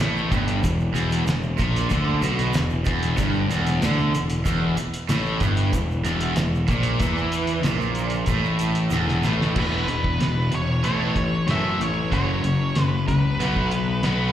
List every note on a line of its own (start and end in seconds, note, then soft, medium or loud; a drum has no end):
0.00 0.28 A1 medium
0.00 0.30 A2 loud
0.00 snare loud
0.00 closed hi-hat medium
0.17 shaker soft
0.29 0.61 G1 medium
0.29 0.61 G2 loud
0.29 kick loud
0.29 closed hi-hat medium
0.29 shaker medium
0.48 closed hi-hat medium
0.62 0.93 E1 medium
0.62 0.88 E2 medium
0.62 kick medium
0.62 closed hi-hat medium
0.62 shaker medium
0.80 shaker soft
0.94 1.24 E1 medium
0.94 1.25 E2 loud
0.94 closed hi-hat medium
0.94 shaker medium
1.10 closed hi-hat medium
1.10 shaker soft
1.25 1.56 E1 medium
1.25 1.52 E2 medium
1.25 snare loud
1.25 closed hi-hat medium
1.25 shaker medium
1.43 shaker soft
1.58 1.89 A#1 medium
1.58 1.89 A#2 medium
1.58 kick medium
1.58 closed hi-hat medium
1.58 shaker medium
1.76 closed hi-hat medium
1.90 2.21 D2 medium
1.90 2.21 D3 loud
1.90 kick loud
1.90 closed hi-hat medium
1.90 shaker medium
2.21 2.52 B1 loud
2.21 2.54 B2 loud
2.21 closed hi-hat medium
2.21 shaker medium
2.39 closed hi-hat medium
2.53 2.84 E1 medium
2.53 2.80 E2 medium
2.53 snare loud
2.53 closed hi-hat medium
2.53 shaker medium
2.70 shaker soft
2.85 3.16 E1 medium
2.85 3.17 E2 loud
2.85 kick loud
2.85 closed hi-hat medium
2.85 shaker medium
3.03 closed hi-hat medium
3.17 3.48 G1 medium
3.17 3.49 G2 loud
3.17 kick loud
3.17 closed hi-hat medium
3.17 shaker medium
3.34 shaker soft
3.48 3.79 E1 medium
3.48 3.82 E2 loud
3.48 closed hi-hat medium
3.48 shaker medium
3.67 snare soft
3.67 closed hi-hat medium
3.67 shaker soft
3.82 4.12 D2 loud
3.82 4.13 D3 loud
3.82 snare loud
3.82 closed hi-hat medium
3.82 shaker medium
3.99 shaker soft
4.13 4.44 E1 medium
4.13 4.39 E2 medium
4.13 closed hi-hat medium
4.13 shaker medium
4.30 closed hi-hat medium
4.45 4.75 E1 medium
4.45 4.77 E2 loud
4.45 kick loud
4.45 closed hi-hat medium
4.45 shaker loud
4.77 muted overdriven electric guitar stroke medium
4.77 muted picked electric bass stroke soft
4.77 muted distorted electric guitar stroke medium
4.77 closed hi-hat medium
4.77 shaker medium
4.94 closed hi-hat medium
5.09 5.39 A1 medium
5.09 5.41 A2 loud
5.09 snare loud
5.09 closed hi-hat medium
5.09 shaker medium
5.26 shaker soft
5.40 5.71 G1 medium
5.40 5.72 G2 loud
5.40 kick loud
5.40 closed hi-hat medium
5.40 shaker medium
5.57 closed hi-hat medium
5.73 6.03 E1 medium
5.73 5.99 E2 medium
5.73 kick medium
5.73 closed hi-hat medium
5.73 shaker medium
5.91 shaker soft
6.05 6.35 E1 loud
6.05 6.36 E2 loud
6.05 closed hi-hat medium
6.05 shaker medium
6.21 closed hi-hat medium
6.21 shaker soft
6.36 6.67 E1 medium
6.36 6.63 E2 medium
6.36 snare loud
6.36 closed hi-hat medium
6.36 shaker medium
6.55 shaker soft
6.68 6.99 A#1 medium
6.68 7.00 A#2 loud
6.68 kick loud
6.68 closed hi-hat medium
6.68 shaker medium
6.83 closed hi-hat medium
7.00 7.61 E2 medium
7.00 7.66 E3 loud
7.00 kick loud
7.00 closed hi-hat medium
7.00 shaker medium
7.18 shaker soft
7.32 closed hi-hat medium
7.32 shaker medium
7.47 closed hi-hat medium
7.47 shaker soft
7.63 8.25 A#1 medium
7.63 8.30 A#2 medium
7.63 snare loud
7.63 closed hi-hat medium
7.63 shaker medium
7.81 shaker soft
7.95 closed hi-hat medium
7.95 shaker medium
8.10 closed hi-hat medium
8.14 shaker soft
8.26 8.88 A1 medium
8.26 8.92 A2 medium
8.26 kick loud
8.26 closed hi-hat medium
8.26 shaker medium
8.45 shaker soft
8.59 closed hi-hat medium
8.59 shaker medium
8.75 closed hi-hat medium
8.75 shaker soft
8.90 9.21 E1 medium
8.90 9.23 E2 loud
8.90 snare medium
8.90 shaker medium
9.09 snare medium
9.23 9.54 A1 medium
9.23 9.55 A2 medium
9.23 snare medium
9.23 shaker medium
9.42 snare medium
9.55 9.86 E1 medium
9.55 9.86 E2 medium
9.55 9.86 B2 medium
9.55 9.86 E3 medium
9.55 kick loud
9.55 crash medium
9.60 10.55 B4 medium
9.87 10.18 E1 medium
9.87 10.17 E2 medium
9.87 10.17 B2 medium
9.87 closed hi-hat medium
10.04 kick medium
10.19 10.50 E1 medium
10.19 10.48 E2 medium
10.19 10.49 B2 medium
10.19 snare loud
10.19 closed hi-hat medium
10.51 10.82 E1 medium
10.51 10.81 E2 medium
10.51 10.81 B2 medium
10.51 10.84 C#5 medium
10.51 closed hi-hat medium
10.84 11.14 A1 medium
10.84 11.14 A2 medium
10.84 11.15 E3 medium
10.84 11.15 A3 medium
10.84 11.45 C#5 medium
10.84 closed hi-hat medium
11.16 11.46 A1 medium
11.16 11.45 A2 medium
11.16 11.46 E3 medium
11.16 kick medium
11.16 closed hi-hat medium
11.47 11.77 F#2 medium
11.47 11.78 A2 medium
11.47 11.78 E3 medium
11.47 11.79 A3 medium
11.47 snare loud
11.47 closed hi-hat medium
11.51 11.83 E5 medium
11.80 12.10 A1 medium
11.80 12.09 A2 medium
11.80 12.10 E3 medium
11.80 12.13 C#5 medium
11.80 closed hi-hat medium
12.11 12.42 F#1 medium
12.11 12.42 F#2 medium
12.11 12.42 C#3 medium
12.11 12.43 F#3 medium
12.11 12.83 C#5 medium
12.11 kick loud
12.11 closed hi-hat medium
12.43 12.73 F#1 medium
12.43 12.73 F#2 medium
12.43 12.73 C#3 medium
12.43 closed hi-hat medium
12.75 13.06 F#1 medium
12.75 13.06 F#2 medium
12.75 13.06 C#3 medium
12.75 snare loud
12.75 closed hi-hat medium
12.83 13.07 B4 medium
13.08 13.38 C#2 medium
13.08 13.37 F#2 medium
13.08 13.37 C#3 medium
13.08 14.32 B4 medium
13.08 kick medium
13.08 closed hi-hat medium
13.40 14.01 B1 medium
13.40 13.70 B2 medium
13.40 13.71 F#3 medium
13.40 13.71 B3 medium
13.40 closed hi-hat medium
13.56 kick medium
13.71 14.01 B2 medium
13.71 14.01 F#3 medium
13.71 closed hi-hat medium
14.03 14.32 B1 medium
14.03 14.32 B2 medium
14.03 14.32 F#3 medium
14.03 14.32 B3 medium
14.03 snare medium
14.03 closed hi-hat medium